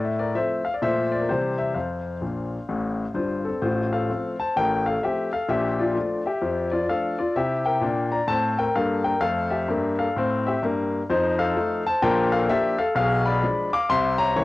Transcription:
0.00 0.29 A2 medium
0.05 0.19 E5 medium
0.19 0.35 A#4 medium
0.19 0.36 D5 medium
0.35 0.61 F3 soft
0.35 0.61 A3 soft
0.35 0.61 C4 soft
0.35 0.64 C5 medium
0.35 0.65 E5 medium
0.65 0.73 F5 medium
0.74 0.82 D5 medium
0.82 1.22 A#2 medium
0.82 1.08 F3 soft
0.82 1.08 A3 soft
0.82 1.09 F4 soft
0.82 1.10 C5 medium
0.82 1.12 E5 loud
1.12 1.20 D5 medium
1.21 1.29 A#4 soft
1.29 1.68 C3 medium
1.29 1.54 E3 soft
1.29 1.55 G3 soft
1.29 1.55 C4 soft
1.29 1.57 G4 medium
1.29 1.58 C5 medium
1.58 1.75 C5 medium
1.58 1.75 E5 medium
1.74 2.14 F2 medium
1.74 3.13 C5 medium
1.74 3.45 F5 medium
2.21 2.56 A#1 soft
2.21 2.57 A#2 soft
2.69 3.04 A1 medium
2.69 3.04 A2 medium
3.14 3.50 G1 soft
3.14 3.50 G2 medium
3.14 3.43 F4 medium
3.14 3.45 C5 medium
3.45 3.61 C4 soft
3.45 3.62 A4 medium
3.61 4.01 A1 medium
3.61 4.02 A2 medium
3.61 3.90 F4 medium
3.61 3.91 C5 medium
3.93 4.36 A4 medium
3.93 4.39 F5 medium
4.09 4.35 F3 soft
4.09 4.35 A3 soft
4.09 4.35 C4 soft
4.40 4.55 C5 medium
4.40 4.56 A5 medium
4.56 4.95 A1 medium
4.56 4.96 A2 medium
4.56 4.84 A#4 medium
4.56 4.86 G5 loud
4.86 5.02 A4 medium
4.86 5.03 F5 medium
5.03 5.28 F3 soft
5.03 5.29 A3 soft
5.03 5.29 C4 soft
5.03 5.31 G4 medium
5.03 5.32 E5 medium
5.33 5.49 A4 medium
5.33 5.49 F5 medium
5.49 5.88 A#1 medium
5.49 5.88 A#2 medium
5.49 5.77 G4 medium
5.49 5.78 E5 medium
5.79 6.23 F4 medium
5.79 6.25 D5 medium
5.95 6.21 F3 soft
5.95 6.21 A3 soft
5.95 6.22 D4 soft
6.26 6.69 G4 medium
6.26 6.72 E5 medium
6.42 6.81 F2 medium
6.42 6.82 F3 medium
6.72 6.88 F4 medium
6.72 6.89 D5 medium
6.89 7.14 F3 soft
6.89 7.15 A3 soft
6.89 7.15 D4 medium
6.89 7.17 A4 medium
6.89 7.19 F5 medium
7.19 7.35 F4 medium
7.19 7.35 D5 medium
7.36 7.73 C3 medium
7.36 7.74 E4 medium
7.36 7.64 G4 medium
7.36 7.65 E5 medium
7.65 8.09 A#4 medium
7.65 8.12 G5 medium
7.81 8.19 A#2 medium
7.81 8.20 D4 medium
8.12 8.28 D5 medium
8.12 8.29 A#5 medium
8.27 8.65 A2 medium
8.27 8.67 C4 medium
8.27 8.57 C5 medium
8.27 8.58 A5 loud
8.59 8.75 A#4 medium
8.59 8.76 G5 medium
8.75 9.13 G2 medium
8.75 9.14 A#3 medium
8.75 9.04 A4 medium
8.75 9.05 F5 medium
9.04 9.21 A#4 medium
9.04 9.22 G5 medium
9.21 9.59 F2 medium
9.21 9.60 A3 medium
9.21 9.49 A4 medium
9.21 9.51 F5 loud
9.50 9.95 G4 medium
9.50 9.98 E5 medium
9.68 10.06 G2 medium
9.68 10.07 A#3 medium
9.99 10.43 A4 medium
9.99 10.45 F5 medium
10.16 10.53 A2 medium
10.16 10.54 C4 medium
10.46 10.62 G4 medium
10.46 10.63 E5 medium
10.62 11.00 G2 medium
10.62 11.01 A#3 medium
11.10 11.49 F2 medium
11.10 11.49 F3 medium
11.10 11.38 D#4 medium
11.10 11.39 C5 medium
11.39 11.83 A4 medium
11.39 11.85 F5 loud
11.57 11.82 F3 soft
11.57 11.82 A3 medium
11.57 11.83 D#4 medium
11.87 12.03 C5 medium
11.87 12.03 A5 loud
12.02 12.42 A#1 medium
12.02 12.42 A#2 loud
12.02 12.31 A#4 loud
12.02 12.32 G5 loud
12.32 12.49 A4 medium
12.32 12.49 F5 loud
12.49 12.75 F3 medium
12.49 12.75 A#3 medium
12.49 12.76 D4 medium
12.49 12.78 G4 medium
12.49 12.79 E5 loud
12.79 12.95 A4 medium
12.79 12.94 F5 medium
12.95 13.35 B1 medium
12.95 13.35 B2 medium
12.95 13.24 G#4 medium
12.95 13.25 F5 loud
13.26 13.70 D5 medium
13.26 13.72 B5 loud
13.43 13.68 F3 soft
13.43 13.69 G#3 medium
13.43 13.69 D4 medium
13.73 13.89 F5 medium
13.73 13.90 D6 loud
13.89 14.29 C2 medium
13.89 14.29 C3 medium
13.89 14.17 E5 medium
13.89 14.19 C6 loud
14.18 14.35 C#5 medium
14.18 14.36 A#5 loud
14.36 14.44 E3 medium
14.36 14.44 A#3 medium
14.36 14.44 C#4 medium
14.36 14.44 E4 medium
14.36 14.44 C#5 loud

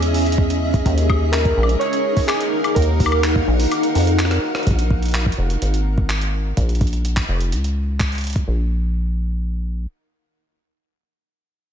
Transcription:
0.00 0.82 E2 medium
0.00 1.61 C#4 medium
0.00 1.82 G#4 medium
0.00 2.36 D#5 medium
0.00 0.86 E5 medium
0.00 closed hi-hat medium
0.14 open hi-hat medium
0.26 closed hi-hat soft
0.32 closed hi-hat medium
0.38 kick loud
0.50 closed hi-hat medium
0.74 kick loud
0.74 closed hi-hat soft
0.86 1.53 D#2 loud
0.86 4.67 D#4 medium
0.86 4.67 A#4 medium
0.86 kick loud
0.86 closed hi-hat medium
0.98 closed hi-hat medium
1.10 kick loud
1.10 high woodblock medium
1.32 1.77 A#4 loud
1.32 clap loud
1.32 closed hi-hat medium
1.45 4.67 F5 medium
1.45 kick loud
1.45 closed hi-hat medium
1.57 1.76 A#1 loud
1.63 high woodblock soft
1.69 closed hi-hat soft
1.76 2.24 C#5 loud
1.76 4.67 F#5 loud
1.81 closed hi-hat medium
1.93 closed hi-hat medium
2.17 kick loud
2.17 open hi-hat medium
2.27 2.72 G#4 medium
2.27 clap loud
2.27 closed hi-hat medium
2.27 high woodblock medium
2.41 closed hi-hat medium
2.64 closed hi-hat soft
2.64 high woodblock medium
2.75 3.44 D#2 loud
2.75 3.20 A#4 medium
2.75 kick loud
2.75 closed hi-hat medium
2.82 closed hi-hat medium
3.00 kick loud
3.00 open hi-hat medium
3.06 high woodblock medium
3.12 closed hi-hat soft
3.12 high woodblock medium
3.24 clap loud
3.24 closed hi-hat medium
3.36 kick loud
3.48 3.67 A#1 loud
3.60 open hi-hat medium
3.71 closed hi-hat medium
3.71 high woodblock soft
3.83 closed hi-hat medium
3.95 4.39 F2 loud
3.95 open hi-hat medium
3.98 open hi-hat medium
4.00 open hi-hat soft
4.02 open hi-hat soft
4.05 closed hi-hat soft
4.05 open hi-hat soft
4.19 clap loud
4.19 closed hi-hat medium
4.25 cross-stick medium
4.31 cross-stick medium
4.31 closed hi-hat medium
4.55 cross-stick medium
4.55 closed hi-hat soft
4.63 5.34 A#1 loud
4.63 kick loud
4.63 closed hi-hat soft
4.67 kick medium
4.67 closed hi-hat medium
4.71 closed hi-hat soft
4.79 closed hi-hat medium
4.91 kick loud
5.02 closed hi-hat soft
5.05 closed hi-hat soft
5.08 closed hi-hat soft
5.11 clap loud
5.11 closed hi-hat soft
5.14 closed hi-hat medium
5.17 closed hi-hat soft
5.23 kick loud
5.23 closed hi-hat soft
5.32 closed hi-hat medium
5.38 5.57 F1 loud
5.50 closed hi-hat soft
5.62 6.53 G#1 medium
5.62 closed hi-hat medium
5.74 closed hi-hat medium
5.98 kick loud
6.10 clap loud
6.10 closed hi-hat medium
6.21 closed hi-hat medium
6.57 7.25 A#1 loud
6.57 kick loud
6.57 closed hi-hat medium
6.69 closed hi-hat soft
6.75 closed hi-hat soft
6.81 kick loud
6.81 closed hi-hat soft
6.87 closed hi-hat soft
6.93 closed hi-hat soft
7.05 closed hi-hat medium
7.17 kick loud
7.17 clap loud
7.17 closed hi-hat medium
7.29 7.54 F1 loud
7.40 closed hi-hat soft
7.52 8.44 C#2 medium
7.52 closed hi-hat medium
7.64 closed hi-hat medium
8.00 kick loud
8.00 clap loud
8.00 closed hi-hat medium
8.12 closed hi-hat soft
8.15 closed hi-hat soft
8.18 closed hi-hat soft
8.21 closed hi-hat soft
8.24 closed hi-hat soft
8.27 closed hi-hat soft
8.30 closed hi-hat soft
8.33 kick loud
8.33 closed hi-hat soft
8.36 closed hi-hat soft
8.48 9.87 A#1 loud

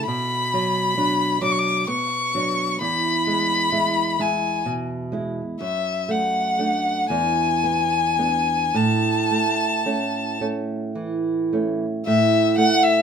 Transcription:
0.06 2.77 B2 medium
0.06 1.40 B5 medium
0.54 0.96 F#3 soft
0.97 1.39 F#3 soft
0.97 1.39 D4 soft
1.42 1.84 F#3 soft
1.42 1.84 D4 soft
1.42 1.53 D6 medium
1.52 1.60 C#6 medium
1.59 1.89 D6 medium
1.88 2.62 B3 soft
1.88 2.80 C#6 medium
2.35 2.77 F#3 soft
2.35 2.77 D4 soft
2.81 5.56 E2 soft
2.81 4.23 B5 medium
3.27 3.71 G#3 soft
3.72 4.15 G#3 soft
3.72 4.15 E4 soft
4.19 4.62 G#3 soft
4.19 4.62 E4 soft
4.19 4.67 G#5 medium
4.66 5.41 B2 soft
5.12 5.56 G#3 soft
5.12 5.56 E4 soft
5.61 7.06 F#2 soft
5.61 6.12 E5 medium
6.09 6.58 A3 soft
6.09 7.09 F#5 soft
6.59 7.06 A3 soft
6.59 7.06 D4 soft
7.10 8.71 E2 medium
7.10 8.78 G#5 medium
7.64 8.18 B3 soft
8.19 8.71 B3 soft
8.19 8.72 D4 soft
8.74 12.02 A2 soft
8.74 10.41 A5 medium
9.31 9.85 A3 soft
9.86 10.36 A3 soft
9.86 10.37 C#4 soft
10.41 10.92 A3 soft
10.41 10.92 C#4 soft
10.95 11.85 E3 soft
11.53 12.02 A3 soft
11.53 12.03 C#4 soft
12.06 13.02 A2 medium
12.06 12.53 E5 medium
12.58 13.02 A3 soft
12.58 12.85 F#5 medium
12.83 13.02 E5 medium

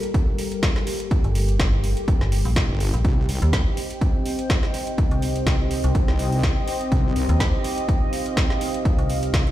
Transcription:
0.00 3.01 G3 medium
0.00 3.01 G4 medium
0.00 9.52 G4 medium
0.00 3.01 A4 medium
0.00 3.01 A#4 loud
0.00 closed hi-hat medium
0.14 kick loud
0.14 closed hi-hat medium
0.39 open hi-hat loud
0.52 closed hi-hat medium
0.63 kick loud
0.63 snare loud
0.63 closed hi-hat medium
0.76 snare soft
0.87 open hi-hat loud
1.00 closed hi-hat medium
1.11 kick loud
1.11 closed hi-hat medium
1.24 1.58 G1 loud
1.24 closed hi-hat soft
1.35 open hi-hat loud
1.49 closed hi-hat medium
1.59 1.95 G1 medium
1.59 kick loud
1.59 snare loud
1.59 closed hi-hat medium
1.84 open hi-hat loud
1.97 closed hi-hat medium
2.08 kick loud
2.08 closed hi-hat medium
2.21 2.43 G1 loud
2.21 snare soft
2.32 open hi-hat loud
2.45 2.67 A#1 loud
2.45 open hi-hat medium
2.56 kick loud
2.56 snare loud
2.56 closed hi-hat medium
2.69 2.91 G1 loud
2.80 open hi-hat loud
2.94 3.03 A#1 medium
2.94 closed hi-hat soft
3.05 3.27 C2 medium
3.05 9.52 C4 medium
3.05 9.52 C5 medium
3.05 9.52 D#5 medium
3.05 6.88 G5 loud
3.05 kick loud
3.05 closed hi-hat medium
3.29 3.40 C2 medium
3.29 open hi-hat loud
3.41 3.64 D#2 loud
3.41 9.52 D#5 medium
3.41 closed hi-hat soft
3.53 kick loud
3.53 snare loud
3.53 closed hi-hat medium
3.77 open hi-hat loud
3.90 closed hi-hat medium
4.01 kick loud
4.01 closed hi-hat medium
4.26 open hi-hat loud
4.39 closed hi-hat medium
4.50 kick loud
4.50 snare loud
4.50 closed hi-hat medium
4.63 snare soft
4.74 open hi-hat loud
4.87 closed hi-hat medium
4.98 kick loud
4.98 closed hi-hat medium
5.11 5.45 C2 loud
5.11 closed hi-hat soft
5.22 open hi-hat loud
5.36 closed hi-hat medium
5.47 5.82 C2 loud
5.47 kick loud
5.47 snare loud
5.47 closed hi-hat medium
5.71 open hi-hat loud
5.84 6.06 C2 loud
5.84 closed hi-hat medium
5.95 kick loud
5.95 closed hi-hat medium
6.08 6.42 C2 loud
6.08 snare soft
6.19 open hi-hat loud
6.32 open hi-hat medium
6.43 kick loud
6.43 snare loud
6.43 closed hi-hat medium
6.68 open hi-hat loud
6.81 closed hi-hat medium
6.92 7.14 C2 loud
6.92 9.52 F5 loud
6.92 kick loud
6.92 closed hi-hat medium
7.16 7.27 C2 loud
7.16 open hi-hat loud
7.29 7.51 D#2 loud
7.29 closed hi-hat medium
7.40 kick loud
7.40 snare loud
7.40 closed hi-hat medium
7.64 open hi-hat loud
7.78 closed hi-hat medium
7.89 kick loud
7.89 closed hi-hat medium
8.13 open hi-hat loud
8.26 closed hi-hat medium
8.37 kick loud
8.37 snare loud
8.37 closed hi-hat medium
8.50 snare soft
8.61 open hi-hat loud
8.74 closed hi-hat medium
8.85 kick loud
8.85 closed hi-hat medium
8.98 9.32 C2 loud
8.98 closed hi-hat soft
9.10 open hi-hat loud
9.23 closed hi-hat medium
9.34 9.52 C2 loud
9.34 kick loud
9.34 snare loud
9.34 closed hi-hat medium
9.47 closed hi-hat soft

